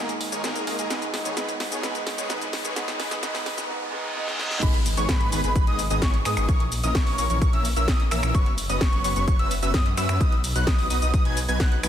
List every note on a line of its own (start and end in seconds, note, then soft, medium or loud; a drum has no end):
0.00 0.30 A#1 loud
0.00 0.66 G#2 loud
0.00 0.11 D#3 medium
0.00 0.67 D#3 medium
0.00 0.11 G#3 medium
0.00 0.67 G#3 medium
0.00 0.11 A#3 medium
0.00 0.68 A#3 medium
0.00 0.68 D#4 loud
0.00 0.11 G#4 medium
0.00 0.11 A#4 medium
0.00 riser medium
0.09 closed hi-hat soft
0.09 shaker soft
0.21 open hi-hat loud
0.32 0.42 D#3 medium
0.32 0.42 G#3 medium
0.32 0.42 A#3 medium
0.32 0.42 G#4 medium
0.32 0.42 C#5 medium
0.32 closed hi-hat soft
0.32 shaker medium
0.44 0.64 D#3 medium
0.44 0.64 G#3 medium
0.44 0.64 A#3 medium
0.44 0.64 G#4 medium
0.44 0.64 A#4 medium
0.44 snare medium
0.44 closed hi-hat medium
0.44 shaker medium
0.56 closed hi-hat soft
0.56 shaker soft
0.66 0.88 G#2 medium
0.66 0.88 D#3 medium
0.66 0.76 D#3 medium
0.66 0.89 G#3 medium
0.66 0.76 G#3 medium
0.66 0.76 A#3 medium
0.66 0.89 A#3 medium
0.66 0.89 D#4 loud
0.66 0.76 G#4 medium
0.66 0.76 A#4 medium
0.66 open hi-hat loud
0.79 0.88 D#3 medium
0.79 0.88 G#3 medium
0.79 0.88 A#3 medium
0.79 0.88 G#4 medium
0.79 0.88 A#4 medium
0.79 closed hi-hat soft
0.79 shaker medium
0.89 1.34 G#2 loud
0.89 1.35 D#3 medium
0.89 1.04 D#3 medium
0.89 1.35 G#3 medium
0.89 1.04 G#3 medium
0.89 1.04 B3 medium
0.89 1.35 B3 medium
0.89 1.36 D#4 loud
0.89 1.04 G#4 medium
0.89 1.04 B4 medium
0.89 snare medium
0.89 closed hi-hat medium
0.89 shaker medium
1.02 closed hi-hat soft
1.02 shaker soft
1.14 snare medium
1.14 open hi-hat loud
1.25 1.35 D#3 medium
1.25 1.35 G#3 medium
1.25 1.35 B3 medium
1.25 1.35 G#4 medium
1.25 1.35 C#5 medium
1.25 closed hi-hat soft
1.25 shaker medium
1.36 1.81 G#2 loud
1.36 1.81 D#3 medium
1.36 1.50 D#3 medium
1.36 1.82 G#3 medium
1.36 1.50 G#3 medium
1.36 1.50 B3 medium
1.36 1.82 B3 medium
1.36 1.82 D#4 loud
1.36 1.50 G#4 medium
1.36 1.50 B4 medium
1.36 snare medium
1.36 closed hi-hat medium
1.36 shaker medium
1.49 closed hi-hat soft
1.49 shaker soft
1.60 snare medium
1.60 open hi-hat loud
1.72 1.82 D#3 medium
1.72 1.82 G#3 medium
1.72 1.82 B3 medium
1.72 1.82 G#4 medium
1.72 1.82 C#5 medium
1.72 closed hi-hat soft
1.72 shaker medium
1.82 2.27 G#2 loud
1.82 2.28 D#3 medium
1.82 1.97 D#3 medium
1.82 2.28 G#3 medium
1.82 1.97 G#3 medium
1.82 1.97 B3 medium
1.82 2.28 B3 medium
1.82 2.29 D#4 loud
1.82 1.97 G#4 medium
1.82 1.97 B4 medium
1.82 snare medium
1.82 closed hi-hat medium
1.82 shaker medium
1.95 closed hi-hat soft
1.95 shaker soft
2.07 snare medium
2.07 open hi-hat loud
2.18 2.28 F#1 medium
2.18 2.28 D#3 medium
2.18 2.28 G#3 medium
2.18 2.28 B3 medium
2.18 2.28 G#4 medium
2.18 2.28 C#5 medium
2.18 closed hi-hat soft
2.18 shaker medium
2.29 2.63 F#2 medium
2.29 2.74 G#2 loud
2.29 2.74 D#3 medium
2.29 2.43 D#3 medium
2.29 2.75 G#3 medium
2.29 2.43 G#3 medium
2.29 2.43 B3 medium
2.29 2.75 B3 medium
2.29 2.75 D#4 loud
2.29 2.43 G#4 medium
2.29 2.43 B4 medium
2.29 snare medium
2.29 closed hi-hat medium
2.29 shaker medium
2.42 closed hi-hat soft
2.42 shaker soft
2.53 snare medium
2.53 open hi-hat loud
2.65 2.74 F#2 loud
2.65 2.75 D#3 medium
2.65 2.75 G#3 medium
2.65 2.75 B3 medium
2.65 2.75 G#4 medium
2.65 2.75 C#5 medium
2.65 closed hi-hat soft
2.65 shaker medium
2.75 2.97 G#2 loud
2.75 2.97 D#3 medium
2.75 2.90 D#3 medium
2.75 2.98 G#3 medium
2.75 2.90 G#3 medium
2.75 2.90 B3 medium
2.75 2.98 B3 medium
2.75 2.98 D#4 loud
2.75 2.90 G#4 medium
2.75 2.90 B4 loud
2.75 snare medium
2.75 closed hi-hat medium
2.75 shaker medium
2.88 snare medium
2.88 closed hi-hat soft
2.88 shaker soft
2.98 3.20 G#2 loud
2.98 3.21 D#3 medium
2.98 3.13 D#3 medium
2.98 3.21 G#3 medium
2.98 3.13 G#3 medium
2.98 3.13 B3 medium
2.98 3.21 B3 medium
2.98 3.22 D#4 loud
2.98 3.13 G#4 medium
2.98 3.13 B4 medium
2.98 snare medium
2.98 open hi-hat loud
3.11 snare medium
3.11 closed hi-hat soft
3.11 shaker medium
3.22 3.43 G#2 loud
3.22 3.44 D#3 medium
3.22 3.36 D#3 medium
3.22 3.44 G#3 medium
3.22 3.36 G#3 medium
3.22 3.36 B3 medium
3.22 3.45 B3 medium
3.22 3.45 D#4 loud
3.22 3.36 G#4 medium
3.22 3.36 B4 medium
3.22 snare loud
3.22 closed hi-hat medium
3.22 shaker medium
3.35 snare medium
3.35 open hi-hat medium
3.35 shaker soft
3.45 3.67 G#2 loud
3.45 3.67 D#3 loud
3.45 3.60 D#3 medium
3.45 3.68 G#3 medium
3.45 3.60 G#3 medium
3.45 3.60 B3 medium
3.45 3.68 B3 loud
3.45 3.68 D#4 loud
3.45 3.60 G#4 medium
3.45 3.60 B4 medium
3.45 snare loud
3.45 open hi-hat loud
3.58 snare medium
3.58 closed hi-hat soft
3.58 shaker medium
3.68 3.90 G#2 loud
3.68 3.90 D#3 loud
3.68 3.91 G#3 loud
3.68 3.91 B3 medium
3.68 3.91 D#4 loud
3.68 reverse cymbal medium
3.91 4.13 G#2 loud
3.91 4.14 D#3 loud
3.91 4.14 G#3 loud
3.91 4.14 B3 loud
3.91 4.15 D#4 loud
4.15 4.36 G#2 loud
4.15 4.37 D#3 medium
4.15 4.37 G#3 medium
4.15 4.38 B3 medium
4.15 4.38 D#4 loud
4.28 snare medium
4.38 4.60 G#2 loud
4.38 4.60 D#3 medium
4.38 4.61 G#3 medium
4.38 4.61 B3 medium
4.38 4.61 D#4 loud
4.38 snare medium
4.51 snare medium
4.63 4.95 G#1 loud
4.63 4.76 D#3 medium
4.63 4.76 G#3 medium
4.63 4.76 B3 medium
4.63 4.76 G#4 medium
4.63 4.76 B4 medium
4.63 4.76 B5 medium
4.63 kick loud
4.63 closed hi-hat medium
4.63 crash loud
4.63 impact medium
4.63 shaker soft
4.74 closed hi-hat soft
4.86 open hi-hat loud
4.86 shaker medium
4.97 5.07 G#1 medium
4.97 5.07 D#3 medium
4.97 5.07 G#3 medium
4.97 5.07 B3 medium
4.97 5.07 G#4 medium
4.97 5.07 C#5 medium
4.97 5.07 C#6 medium
4.97 closed hi-hat soft
4.97 shaker soft
5.09 5.30 D#3 medium
5.09 5.30 G#3 medium
5.09 5.30 B3 medium
5.09 5.30 G#4 medium
5.09 5.30 B4 medium
5.09 5.29 B5 medium
5.09 kick loud
5.09 snare loud
5.09 closed hi-hat medium
5.09 shaker soft
5.21 closed hi-hat soft
5.32 5.42 G#1 loud
5.32 5.41 D#3 medium
5.32 5.41 G#3 medium
5.32 5.41 B3 medium
5.32 5.41 G#4 medium
5.32 5.41 B4 medium
5.32 5.41 B5 medium
5.32 open hi-hat loud
5.32 shaker medium
5.44 5.53 G#1 loud
5.44 5.53 D#3 medium
5.44 5.53 G#3 medium
5.44 5.53 B3 medium
5.44 5.53 G#4 medium
5.44 5.53 B4 medium
5.44 5.53 B5 medium
5.44 closed hi-hat soft
5.44 shaker soft
5.56 5.64 D#3 medium
5.56 5.64 G#3 medium
5.56 5.64 B3 medium
5.56 5.64 G#4 medium
5.56 5.64 B4 medium
5.56 5.64 B5 loud
5.56 kick loud
5.56 closed hi-hat medium
5.56 shaker soft
5.67 5.88 G#1 medium
5.67 5.81 D#3 medium
5.67 5.81 G#3 medium
5.67 5.81 B3 medium
5.67 5.81 G#4 medium
5.67 5.81 D#5 medium
5.67 5.81 D#6 medium
5.67 closed hi-hat soft
5.79 open hi-hat loud
5.79 shaker medium
5.90 6.00 G#1 medium
5.90 6.00 D#3 loud
5.90 6.00 G#3 medium
5.90 6.00 B3 medium
5.90 6.00 G#4 medium
5.90 6.00 D#5 loud
5.90 6.00 D#6 loud
5.90 closed hi-hat soft
5.90 shaker soft
6.02 6.16 D#3 loud
6.02 6.16 G#3 medium
6.02 6.16 B3 medium
6.02 6.15 G#4 medium
6.02 6.16 C#5 loud
6.02 6.16 C#6 loud
6.02 kick loud
6.02 snare loud
6.02 closed hi-hat medium
6.02 shaker soft
6.14 closed hi-hat soft
6.25 6.35 G#2 loud
6.25 6.35 D#3 loud
6.25 6.35 G#3 medium
6.25 6.35 B3 medium
6.25 6.35 G#4 loud
6.25 6.35 D#5 loud
6.25 6.35 D#6 loud
6.25 finger snap medium
6.25 open hi-hat loud
6.25 shaker medium
6.37 6.46 G#1 loud
6.37 6.47 D#3 medium
6.37 6.47 G#3 medium
6.37 6.47 B3 medium
6.37 6.47 G#4 medium
6.37 6.47 D#5 medium
6.37 6.47 D#6 medium
6.37 finger snap medium
6.37 closed hi-hat soft
6.37 shaker soft
6.49 6.62 E3 medium
6.49 6.62 A#3 medium
6.49 6.62 C#4 medium
6.49 6.62 A#4 medium
6.49 6.62 C#5 medium
6.49 6.62 C#6 medium
6.49 kick loud
6.49 closed hi-hat medium
6.49 shaker soft
6.60 closed hi-hat soft
6.72 open hi-hat loud
6.72 shaker medium
6.83 6.93 A#1 medium
6.83 6.93 E3 medium
6.83 6.93 A#3 medium
6.83 6.93 C#4 medium
6.83 6.93 A#4 medium
6.83 6.93 D#5 medium
6.83 6.93 D#6 medium
6.83 closed hi-hat soft
6.83 shaker soft
6.95 7.16 E3 medium
6.95 7.16 A#3 medium
6.95 7.16 C#4 medium
6.95 7.16 A#4 medium
6.95 7.16 C#5 medium
6.95 7.16 C#6 medium
6.95 kick loud
6.95 snare loud
6.95 closed hi-hat medium
6.95 shaker soft
7.07 open hi-hat medium
7.18 7.28 A#1 loud
7.18 7.27 E3 medium
7.18 7.27 A#3 medium
7.18 7.27 C#4 medium
7.18 7.27 A#4 medium
7.18 7.27 C#5 medium
7.18 7.27 C#6 medium
7.18 open hi-hat loud
7.18 shaker medium
7.30 7.39 A#1 loud
7.30 7.39 E3 medium
7.30 7.39 A#3 medium
7.30 7.39 C#4 medium
7.30 7.39 A#4 medium
7.30 7.39 C#5 medium
7.30 7.39 C#6 medium
7.30 closed hi-hat soft
7.30 shaker soft
7.42 7.51 A#1 loud
7.42 7.50 E3 medium
7.42 7.50 A#3 medium
7.42 7.50 C#4 medium
7.42 7.50 A#4 medium
7.42 7.50 C#5 loud
7.42 7.50 C#6 loud
7.42 kick loud
7.42 closed hi-hat medium
7.42 shaker soft
7.53 7.74 A#1 medium
7.53 7.67 E3 medium
7.53 7.67 A#3 medium
7.53 7.67 C#4 medium
7.53 7.67 A#4 medium
7.53 7.67 E5 medium
7.53 7.67 E6 medium
7.53 closed hi-hat soft
7.65 open hi-hat loud
7.65 shaker medium
7.76 7.86 A#1 loud
7.76 7.86 E3 medium
7.76 7.86 A#3 medium
7.76 7.86 C#4 medium
7.76 7.86 A#4 medium
7.76 7.86 E5 loud
7.76 7.86 E6 loud
7.76 closed hi-hat soft
7.76 shaker soft
7.88 8.02 E3 loud
7.88 8.02 A#3 medium
7.88 8.02 C#4 medium
7.88 8.02 A#4 medium
7.88 8.02 D#5 loud
7.88 8.02 D#6 loud
7.88 kick loud
7.88 snare loud
7.88 closed hi-hat medium
7.88 shaker soft
8.00 closed hi-hat soft
8.11 8.21 A#1 loud
8.11 8.21 E3 loud
8.11 8.21 A#3 medium
8.11 8.21 C#4 medium
8.11 8.21 A#4 medium
8.11 8.21 E5 loud
8.11 8.21 E6 loud
8.11 finger snap medium
8.11 open hi-hat loud
8.11 shaker medium
8.23 8.32 A#1 loud
8.23 8.33 E3 medium
8.23 8.33 A#3 medium
8.23 8.33 C#4 medium
8.23 8.33 A#4 medium
8.23 8.33 E5 medium
8.23 8.33 E6 medium
8.23 finger snap medium
8.23 closed hi-hat soft
8.23 shaker soft
8.35 8.48 F#3 medium
8.35 8.48 B3 medium
8.35 8.48 C#4 medium
8.35 8.48 B4 medium
8.35 8.48 C#5 medium
8.35 8.48 C#6 medium
8.35 kick loud
8.35 closed hi-hat medium
8.35 shaker soft
8.46 closed hi-hat soft
8.58 open hi-hat loud
8.58 shaker medium
8.69 8.79 F#1 loud
8.69 8.79 F#3 medium
8.69 8.79 B3 medium
8.69 8.79 C#4 medium
8.69 8.79 B4 medium
8.69 8.79 D#5 medium
8.69 8.79 D#6 medium
8.69 closed hi-hat soft
8.69 shaker soft
8.81 9.02 F#3 medium
8.81 9.02 B3 medium
8.81 9.02 C#4 medium
8.81 9.02 B4 medium
8.81 9.02 C#5 medium
8.81 9.02 C#6 medium
8.81 kick loud
8.81 snare loud
8.81 closed hi-hat medium
8.81 shaker soft
8.93 closed hi-hat soft
9.04 9.14 F#1 loud
9.04 9.13 F#3 medium
9.04 9.13 B3 medium
9.04 9.13 C#4 medium
9.04 9.13 B4 medium
9.04 9.13 C#5 medium
9.04 9.13 C#6 medium
9.04 open hi-hat loud
9.04 shaker medium
9.16 9.25 F#1 loud
9.16 9.25 F#3 medium
9.16 9.25 B3 medium
9.16 9.25 C#4 medium
9.16 9.25 B4 medium
9.16 9.25 C#5 medium
9.16 9.25 C#6 medium
9.16 closed hi-hat soft
9.16 shaker soft
9.28 9.36 F#3 medium
9.28 9.36 B3 medium
9.28 9.36 C#4 medium
9.28 9.36 B4 medium
9.28 9.36 C#5 medium
9.28 9.37 C#6 loud
9.28 kick loud
9.28 closed hi-hat medium
9.28 shaker soft
9.39 9.60 F#1 medium
9.39 9.53 F#3 medium
9.39 9.53 B3 medium
9.39 9.53 C#4 medium
9.39 9.53 B4 medium
9.39 9.53 E5 medium
9.39 9.53 E6 medium
9.39 closed hi-hat soft
9.51 open hi-hat loud
9.51 shaker medium
9.62 9.72 F#1 loud
9.62 9.72 F#3 medium
9.62 9.72 B3 medium
9.62 9.72 C#4 medium
9.62 9.72 B4 medium
9.62 9.72 E5 loud
9.62 9.72 E6 loud
9.62 closed hi-hat soft
9.62 shaker soft
9.74 9.95 F#2 loud
9.74 9.88 F#3 loud
9.74 9.88 B3 medium
9.74 9.88 C#4 medium
9.74 9.88 B4 medium
9.74 9.88 D#5 loud
9.74 9.88 D#6 loud
9.74 kick loud
9.74 snare loud
9.74 closed hi-hat medium
9.74 shaker soft
9.86 closed hi-hat soft
9.97 10.07 F#2 medium
9.97 10.07 F#3 loud
9.97 10.07 B3 medium
9.97 10.07 C#4 medium
9.97 10.07 B4 medium
9.97 10.07 E5 loud
9.97 10.07 E6 loud
9.97 finger snap medium
9.97 open hi-hat loud
9.97 shaker medium
10.09 10.18 F#2 loud
10.09 10.19 F#3 medium
10.09 10.19 B3 medium
10.09 10.19 C#4 medium
10.09 10.19 B4 medium
10.09 10.19 E5 medium
10.09 10.19 E6 medium
10.09 finger snap medium
10.09 closed hi-hat soft
10.09 shaker soft
10.21 10.53 B1 loud
10.21 10.34 F#3 medium
10.21 10.34 B3 medium
10.21 10.34 D#4 medium
10.21 10.34 B4 medium
10.21 10.34 D#5 medium
10.21 10.34 D#6 medium
10.21 kick loud
10.21 closed hi-hat medium
10.21 shaker soft
10.32 closed hi-hat soft
10.44 open hi-hat loud
10.44 shaker medium
10.55 10.65 B1 loud
10.55 10.65 F#3 medium
10.55 10.65 B3 medium
10.55 10.65 D#4 medium
10.55 10.65 B4 medium
10.55 10.65 F#5 loud
10.55 10.65 F#6 medium
10.55 closed hi-hat soft
10.55 shaker soft
10.67 10.88 F#3 medium
10.67 10.88 B3 medium
10.67 10.88 D#4 medium
10.67 10.88 B4 medium
10.67 10.88 D#5 medium
10.67 10.88 D#6 medium
10.67 kick loud
10.67 snare loud
10.67 closed hi-hat medium
10.67 shaker soft
10.79 open hi-hat medium
10.90 11.00 B1 medium
10.90 10.99 F#3 medium
10.90 10.99 B3 medium
10.90 10.99 D#4 medium
10.90 10.99 B4 medium
10.90 10.99 D#5 medium
10.90 10.99 D#6 medium
10.90 open hi-hat loud
10.90 shaker medium
11.02 11.11 B1 loud
11.02 11.11 F#3 medium
11.02 11.11 B3 medium
11.02 11.11 D#4 medium
11.02 11.11 B4 medium
11.02 11.11 D#5 medium
11.02 11.11 D#6 medium
11.02 closed hi-hat soft
11.02 shaker soft
11.14 11.23 F#3 medium
11.14 11.23 B3 medium
11.14 11.23 D#4 medium
11.14 11.23 B4 medium
11.14 11.23 D#5 medium
11.14 11.23 D#6 loud
11.14 kick loud
11.14 closed hi-hat medium
11.14 shaker soft
11.25 11.46 B1 medium
11.25 11.39 F#3 medium
11.25 11.39 B3 medium
11.25 11.39 D#4 medium
11.25 11.39 B4 medium
11.25 11.39 G#5 medium
11.25 11.39 G#6 medium
11.25 closed hi-hat soft
11.37 open hi-hat loud
11.37 shaker medium
11.48 11.58 B1 medium
11.48 11.58 F#3 loud
11.48 11.58 B3 medium
11.48 11.58 D#4 medium
11.48 11.58 B4 medium
11.48 11.58 G#5 loud
11.48 11.58 G#6 loud
11.48 closed hi-hat soft
11.48 shaker soft
11.60 11.74 F#3 loud
11.60 11.74 B3 medium
11.60 11.74 D#4 medium
11.60 11.74 B4 medium
11.60 11.74 F#5 loud
11.60 11.74 F#6 loud
11.60 kick loud
11.60 snare loud
11.60 closed hi-hat medium
11.60 shaker soft
11.72 closed hi-hat soft
11.83 11.88 B1 medium
11.83 11.88 F#3 loud
11.83 11.88 B3 medium
11.83 11.88 D#4 medium
11.83 11.88 B4 medium
11.83 11.88 G#5 loud
11.83 11.88 G#6 loud
11.83 finger snap medium
11.83 open hi-hat loud
11.83 shaker medium